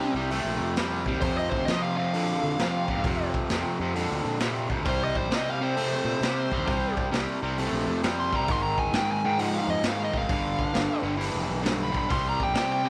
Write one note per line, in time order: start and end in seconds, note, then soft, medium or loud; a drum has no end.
0.00 0.12 C3 medium
0.00 0.13 G3 medium
0.00 0.13 D#4 medium
0.14 0.41 C2 medium
0.14 0.30 C3 medium
0.14 0.30 G3 medium
0.31 0.74 C3 medium
0.31 0.74 A3 medium
0.31 open hi-hat medium
0.45 0.58 A#1 medium
0.59 1.05 F2 medium
0.76 1.04 C3 medium
0.76 1.04 G3 medium
0.76 snare loud
0.76 open hi-hat medium
1.06 1.21 C3 medium
1.06 1.22 G3 medium
1.06 kick medium
1.13 1.20 D#2 medium
1.21 1.47 F2 loud
1.21 1.65 F2 medium
1.21 1.65 C3 medium
1.21 1.36 C5 medium
1.21 kick loud
1.21 open hi-hat medium
1.38 1.50 D#5 medium
1.50 1.65 C5 medium
1.50 kick medium
1.59 1.66 D2 medium
1.65 2.31 F3 medium
1.65 1.81 D#5 medium
1.65 snare loud
1.65 open hi-hat medium
1.69 1.95 F2 medium
1.69 1.96 C3 medium
1.82 1.96 F5 medium
1.97 2.12 F2 medium
1.97 2.13 C3 medium
1.97 3.30 F5 medium
2.14 2.56 F2 medium
2.14 2.56 D3 medium
2.14 open hi-hat medium
2.43 2.50 D3 medium
2.59 2.86 F2 medium
2.59 2.87 C3 medium
2.59 2.84 F3 medium
2.59 snare loud
2.59 open hi-hat medium
2.88 3.03 F2 medium
2.88 3.03 C3 medium
2.88 kick medium
2.97 3.04 G#2 medium
3.04 3.29 F2 medium
3.04 3.47 F2 medium
3.04 3.48 C3 medium
3.04 kick loud
3.04 open hi-hat medium
3.34 kick medium
3.49 3.62 F2 medium
3.49 3.77 F2 medium
3.49 3.77 C3 medium
3.49 snare loud
3.49 open hi-hat medium
3.79 4.05 F2 medium
3.79 3.94 F2 medium
3.79 3.95 C3 medium
3.95 4.37 F2 medium
3.95 4.37 D3 medium
3.95 open hi-hat medium
4.11 4.23 D2 medium
4.25 4.70 A#2 medium
4.40 4.67 F2 medium
4.40 4.67 C3 loud
4.40 snare loud
4.40 open hi-hat medium
4.70 4.84 F2 medium
4.70 4.84 C3 medium
4.70 kick medium
4.77 4.84 D2 medium
4.85 5.11 C2 loud
4.85 5.28 C3 medium
4.85 5.28 G3 medium
4.85 5.02 C5 loud
4.85 kick loud
4.85 open hi-hat medium
5.04 5.17 D#5 medium
5.15 5.31 C5 medium
5.15 kick medium
5.23 5.29 A#1 medium
5.30 5.94 C3 medium
5.30 5.58 C3 medium
5.30 5.58 G3 loud
5.30 snare loud
5.30 open hi-hat medium
5.36 5.50 D#5 medium
5.50 5.63 F5 medium
5.61 5.75 C3 medium
5.61 5.75 G3 medium
5.61 6.94 C5 loud
5.76 6.19 C3 medium
5.76 6.19 A3 loud
5.76 open hi-hat medium
6.04 6.12 A#2 medium
6.21 6.46 C3 medium
6.21 6.49 C3 medium
6.21 6.49 G3 medium
6.21 snare loud
6.21 open hi-hat medium
6.52 6.65 C3 medium
6.52 6.65 G3 medium
6.52 kick medium
6.58 6.65 D#2 medium
6.66 6.93 C2 medium
6.66 7.09 C3 medium
6.66 7.09 G3 medium
6.66 kick loud
6.66 open hi-hat medium
6.97 kick medium
7.12 7.25 C2 medium
7.12 7.39 C3 medium
7.12 7.39 G3 medium
7.12 snare loud
7.12 open hi-hat medium
7.42 7.68 C2 medium
7.42 7.57 C3 medium
7.42 7.57 G3 medium
7.58 8.01 C3 medium
7.58 8.01 A3 medium
7.58 open hi-hat medium
7.72 7.85 A#1 medium
7.87 8.32 F2 medium
8.03 8.30 C3 medium
8.03 8.30 G3 medium
8.03 snare loud
8.03 open hi-hat medium
8.20 8.35 C6 medium
8.32 8.47 C3 medium
8.32 8.47 G3 medium
8.32 8.51 A#5 medium
8.32 kick medium
8.40 8.47 C3 medium
8.48 8.73 G#1 loud
8.48 8.91 G#2 medium
8.48 8.91 D#3 medium
8.48 8.62 C6 loud
8.48 kick loud
8.48 open hi-hat medium
8.63 8.79 A#5 medium
8.78 8.93 G#5 medium
8.78 kick medium
8.85 8.91 F#1 medium
8.92 9.56 G#2 medium
8.92 9.20 G#2 medium
8.92 9.21 D#3 medium
8.92 snare loud
8.92 open hi-hat medium
8.96 9.10 G5 medium
9.11 9.25 G#5 medium
9.25 9.38 G#2 medium
9.25 9.38 D#3 medium
9.25 9.40 G5 medium
9.39 9.81 G#2 medium
9.39 9.81 F3 medium
9.39 9.55 F#5 medium
9.39 open hi-hat medium
9.55 9.69 F5 loud
9.67 9.75 F2 medium
9.67 9.84 D#5 medium
9.83 10.08 G#2 medium
9.83 10.11 G#2 medium
9.83 10.11 D#3 medium
9.83 snare loud
9.83 open hi-hat medium
9.88 10.01 F5 loud
10.04 10.17 D#5 medium
10.13 10.27 G#2 medium
10.13 10.28 D#3 medium
10.13 kick medium
10.19 10.28 G#1 medium
10.19 11.04 F5 medium
10.29 10.54 G1 medium
10.29 10.71 G2 medium
10.29 10.72 D3 medium
10.29 kick loud
10.29 open hi-hat medium
10.59 kick medium
10.73 10.87 G1 medium
10.73 11.00 G2 medium
10.73 11.01 D3 loud
10.73 snare loud
10.73 open hi-hat medium
11.02 11.29 G1 medium
11.02 11.16 G2 medium
11.02 11.17 D3 medium
11.17 11.61 G2 medium
11.17 11.60 E3 medium
11.17 open hi-hat medium
11.35 11.47 F1 medium
11.49 11.94 B1 medium
11.63 11.90 G2 medium
11.63 11.90 D3 loud
11.63 snare loud
11.63 open hi-hat medium
11.83 11.96 B5 loud
11.91 12.07 G2 medium
11.91 12.07 D3 medium
11.91 kick medium
11.98 12.11 B5 medium
12.03 12.09 B1 medium
12.09 12.36 C2 loud
12.09 12.52 C3 medium
12.09 12.52 G3 medium
12.09 12.26 C6 loud
12.09 kick loud
12.09 open hi-hat medium
12.29 12.42 A#5 medium
12.40 12.57 G5 medium
12.40 kick medium
12.47 12.54 A#1 medium
12.54 12.81 C3 medium
12.54 12.89 C3 medium
12.54 12.81 G3 medium
12.54 12.71 G5 loud
12.54 snare loud
12.54 open hi-hat medium
12.72 12.85 G5 medium
12.84 12.89 C3 medium
12.84 12.89 G3 medium